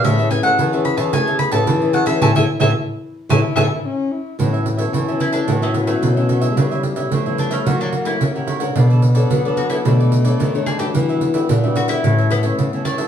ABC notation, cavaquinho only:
X:1
M:4/4
L:1/16
Q:1/4=110
K:A
V:1 name="Cavaquinho"
[Gcea] [cea] z [cea] [Gcea] [cea]2 [cea] [Gcea] [cea] z [cea]2 [cea] [Gcea] [cea] | [Ace] [Ace] z [Ace] z4 [Ace] z [Ace] z4 z | [FAce] [Ace] z [Ace] [FAce] [Ace]2 [Ace] [FAce] [Ace] z [Ace]2 [Ace] [FAce] [Ace] | [=GBce] [Bce] z [Bce] [GBce] [Bce]2 [Bce] [E^Acf] [Acf] z [Acf]2 [Acf] [EAcf] [Acf] |
[DABd] [ABd] z [ABd] [DABd] [ABd]2 [ABd] [DABd] [ABd] z [ABd]2 [ABd] [DABd] [ABd] | [D=GBe] [GBe] z [GBe] [DGBe] [GBe]2 [GBe] [GAce] [Ace] z [Ace]2 [Ace] [GAce] [Ace] |]